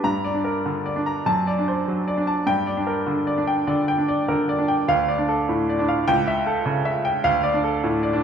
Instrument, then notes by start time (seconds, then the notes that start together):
grand piano
0.04 G2 A#5
0.24 D5
0.34 D4
0.44 A#4
0.66 D3
0.86 D5
0.96 D4
1.06 A#5
1.26 F#2 A5
1.47 D5
1.58 D4
1.68 C5
1.88 F#3
2.08 D5
2.17 D4
2.27 A5
2.47 G2 G5
2.67 D5
2.77 D4
2.87 A#4
3.07 D3
3.27 D5
3.38 D4
3.47 G5
3.67 D3 D5
3.88 G5
3.98 D4
4.08 D5
4.28 D3 A#4
4.49 D5
4.59 D4
4.68 G5
4.88 D2 F5
5.08 D5
5.18 D4
5.29 A4
5.49 A2
5.70 D5
5.79 D4
5.88 F5
6.08 C#2 G5
6.27 E5
6.47 A4
6.66 C#3
6.85 E5
7.05 G5
7.24 D2 F5
7.43 D5
7.54 D4
7.64 A4
7.84 A2
8.03 D5
8.13 D4